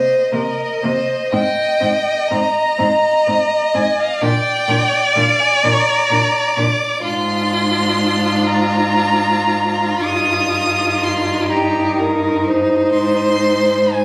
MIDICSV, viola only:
0, 0, Header, 1, 2, 480
1, 0, Start_track
1, 0, Tempo, 981997
1, 648, Time_signature, 6, 3, 24, 8
1, 1596, Tempo, 941915
1, 3996, Tempo, 988468
1, 4476, Tempo, 1063830
1, 4956, Tempo, 1001669
1, 5436, Tempo, 969305
1, 6931, End_track
2, 0, Start_track
2, 0, Title_t, "Viola"
2, 0, Program_c, 0, 41
2, 157, Note_on_c, 0, 58, 46
2, 196, Note_off_c, 0, 58, 0
2, 405, Note_on_c, 0, 58, 47
2, 444, Note_off_c, 0, 58, 0
2, 647, Note_on_c, 0, 60, 56
2, 686, Note_off_c, 0, 60, 0
2, 881, Note_on_c, 0, 60, 50
2, 920, Note_off_c, 0, 60, 0
2, 1126, Note_on_c, 0, 60, 49
2, 1165, Note_off_c, 0, 60, 0
2, 1362, Note_on_c, 0, 60, 57
2, 1401, Note_off_c, 0, 60, 0
2, 1601, Note_on_c, 0, 60, 51
2, 1642, Note_off_c, 0, 60, 0
2, 1838, Note_on_c, 0, 60, 59
2, 1879, Note_off_c, 0, 60, 0
2, 2080, Note_on_c, 0, 62, 62
2, 2121, Note_off_c, 0, 62, 0
2, 2324, Note_on_c, 0, 62, 59
2, 2365, Note_off_c, 0, 62, 0
2, 2562, Note_on_c, 0, 62, 55
2, 2602, Note_off_c, 0, 62, 0
2, 2806, Note_on_c, 0, 62, 61
2, 2847, Note_off_c, 0, 62, 0
2, 3049, Note_on_c, 0, 62, 59
2, 3090, Note_off_c, 0, 62, 0
2, 3286, Note_on_c, 0, 62, 62
2, 3327, Note_off_c, 0, 62, 0
2, 3519, Note_on_c, 0, 62, 71
2, 4940, Note_off_c, 0, 62, 0
2, 4955, Note_on_c, 0, 63, 79
2, 6931, Note_off_c, 0, 63, 0
2, 6931, End_track
0, 0, End_of_file